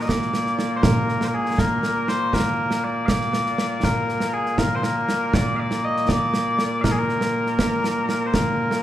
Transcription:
Already playing: bagpipes A#2 A#3
0.01 bagpipes D#5
0.08 bagpipes D5, concert bass drum, snare
0.22 snare
0.34 snare
0.46 snare
0.59 snare
0.77 bagpipes C5
0.83 bagpipes A#4, concert bass drum, snare
1.08 snare
1.21 bagpipes C5, snare
1.27 bagpipes A#4
1.34 bagpipes G#4
1.46 snare
1.58 bagpipes A#4, concert bass drum, snare
1.83 snare
2.08 bagpipes C5, snare
2.33 bagpipes A#4, concert bass drum, snare
2.71 snare
2.84 bagpipes D5
3.06 bagpipes D5 F5, concert bass drum, snare
3.21 snare
3.33 snare
3.46 snare
3.58 snare
3.83 bagpipes A#4, concert bass drum, snare
4.09 snare
4.20 snare
4.34 bagpipes G#4
4.46 snare
4.58 bagpipes A#4, concert bass drum, snare
4.75 bagpipes C5
4.83 bagpipes A#4, snare
5.09 snare
5.33 bagpipes D5, concert bass drum, snare
5.56 bagpipes D5 F5
5.71 snare
5.84 bagpipes D#5
5.96 snare
6.09 bagpipes D5, concert bass drum, snare
6.34 snare
6.59 snare
6.81 bagpipes A#4 F5, concert bass drum, snare
6.92 bagpipes G#4
6.99 bagpipes A#4
7.09 snare
7.21 snare
7.46 snare
7.59 concert bass drum, snare
7.84 snare
8.09 snare
8.26 bagpipes C5
8.34 bagpipes A#4, concert bass drum, snare
8.71 snare

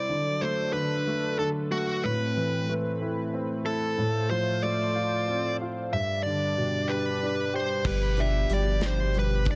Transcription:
Already playing: grand piano C3 G3 C4 E4, lead electric guitar D5
0.09 grand piano D3, analog synth pad F#3 D4 A4
0.41 grand piano A3, lead electric guitar C5
0.73 grand piano D3, lead electric guitar B4
1.07 grand piano A3
1.39 grand piano D3, lead electric guitar A4
1.72 grand piano A3, lead electric guitar F#4
2.04 grand piano A2, analog synth pad A3 C4 B4, lead electric guitar B4
2.37 grand piano E3
2.69 grand piano A3
3.02 grand piano E4
3.34 grand piano C4
3.66 grand piano E4, lead electric guitar A4
3.98 grand piano A2, analog synth pad F4 C5
4.30 grand piano F3, lead electric guitar C5
4.62 grand piano A3, lead electric guitar D5
4.95 grand piano F4
5.28 grand piano C4
5.61 grand piano F4
5.92 grand piano G2, analog synth pad G3 D4 D5, lead electric guitar E5
6.23 grand piano D3, lead electric guitar D5
6.57 grand piano B2
6.89 grand piano G4, lead electric guitar B4
7.23 grand piano D4
7.54 grand piano G4, lead electric guitar C5
7.85 sub bass G1, analog synth pad B2 F3 G4, grand piano G3, lead electric guitar B4, kick, crash
8.17 grand piano D4, lead electric guitar E5, closed hi-hat
8.50 sub bass G1, grand piano G3, closed hi-hat
8.54 lead electric guitar D5
8.81 grand piano D4, snare, closed hi-hat
8.86 lead electric guitar C5
9.14 grand piano G3, closed hi-hat
9.19 lead electric guitar B4
9.45 grand piano D4, kick, closed hi-hat
9.51 lead electric guitar D5

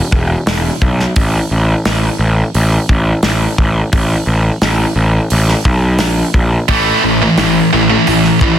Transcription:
0.12 picked electric bass E1, kick
0.47 picked electric bass E1, snare, open hi-hat
0.82 picked electric bass B1, kick
1.00 snare
1.16 picked electric bass A1, kick, open hi-hat
1.51 picked electric bass A1
1.85 picked electric bass A1, snare, open hi-hat
2.19 picked electric bass A1
2.55 picked electric bass A1, open hi-hat
2.89 picked electric bass A1, kick
3.23 picked electric bass A1, snare, open hi-hat
3.58 picked electric bass A1, kick
3.93 picked electric bass A1, kick, open hi-hat
4.27 picked electric bass A1
4.62 picked electric bass A1, snare, open hi-hat
4.96 picked electric bass A1
5.30 picked electric bass A1, open hi-hat
5.48 snare
5.65 picked electric bass B1, kick
5.99 picked electric bass A#1, snare, open hi-hat
6.34 picked electric bass A#1, kick
6.68 picked electric bass A1, distorted electric guitar A2 E3 A3, kick, open hi-hat
7.04 picked electric bass A1, distorted electric guitar A2 E3
7.22 distorted electric guitar A2 E3
7.38 picked electric bass A1, distorted electric guitar A2 E3, snare, open hi-hat
7.73 picked electric bass A1, distorted electric guitar A2 E3
7.90 distorted electric guitar A2 E3
8.07 picked electric bass A1, distorted electric guitar A2 E3, open hi-hat
8.24 snare
8.41 picked electric bass A1, distorted electric guitar A2 E3, kick

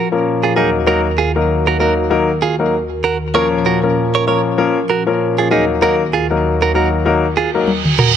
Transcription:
Already playing: analog synth pad A#2 F3 C#4 A#4
0.12 grand piano F3 A#3 C#4 A#4
0.43 clean electric guitar F4 G#4
0.56 analog synth pad D#2 D#3 F#4, grand piano F#3 A#3 D#4 A#4, clean electric guitar D#4 G#4
0.86 grand piano F#3 A#3 D#4 A#4, clean electric guitar F#4 A#4
1.18 clean electric guitar F4 G#4
1.35 grand piano F#3 A#3 D#4 A#4
1.67 clean electric guitar F#4 A#4
1.79 grand piano F#3 A#3 D#4 A#4, clean electric guitar F#4 A#4
2.10 grand piano F#3 A#3 D#4 A#4
2.42 clean electric guitar F4 G#4
2.59 grand piano F#3 A#3 D#4 A#4
3.04 clean electric guitar F#4 A#4
3.34 analog synth pad A#2 F3 C#4, grand piano F3 A#3 C#4 A#4, clean electric guitar A#4 C#5
3.66 clean electric guitar F#4 A#4
3.83 grand piano F3 A#3 C#4 A#4
4.15 clean electric guitar A#4 C#5
4.27 grand piano F3 A#3 C#4 A#4, clean electric guitar A#4 C#5
4.58 grand piano F3 A#3 C#4 A#4
4.90 clean electric guitar F#4 A#4
5.06 grand piano F3 A#3 C#4 A#4
5.38 clean electric guitar F4 G#4
5.51 analog synth pad D#2 D#3 F#4, grand piano F#3 A#3 D#4 A#4, clean electric guitar D#4 G#4
5.81 grand piano F#3 A#3 D#4 A#4, clean electric guitar F#4 A#4
6.13 clean electric guitar F4 G#4
6.30 grand piano F#3 A#3 D#4 A#4
6.62 clean electric guitar F#4 A#4
6.74 grand piano F#3 A#3 D#4 A#4, clean electric guitar F#4 A#4
7.05 grand piano F#3 A#3 D#4 A#4, reverse cymbal
7.37 clean electric guitar F4 G#4
7.54 grand piano F#3 A#3 D#4 A#4
7.67 high tom
7.85 mid tom
7.98 clean electric guitar F#4 A#4, mid tom

